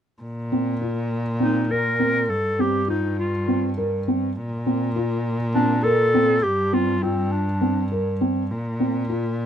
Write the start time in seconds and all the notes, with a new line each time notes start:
0.22 A#2
0.52 C4
0.81 F4
1.40 C4 D#4
1.70 A#4
1.99 C4
2.29 G2 A4
2.59 C4 G4
2.88 D#4 F4
3.19 F4
3.48 C4
3.77 A#4
4.08 C4
4.36 A#2
4.66 C4
4.96 F4
5.55 C4 D4
5.84 A4 A#4
6.14 C4
6.43 G2 G4
6.73 C4 F4
7.03 C4 F4
7.32 D4
7.61 C4
7.92 A#4
8.21 C4
8.51 A#2
8.80 C4
9.09 F4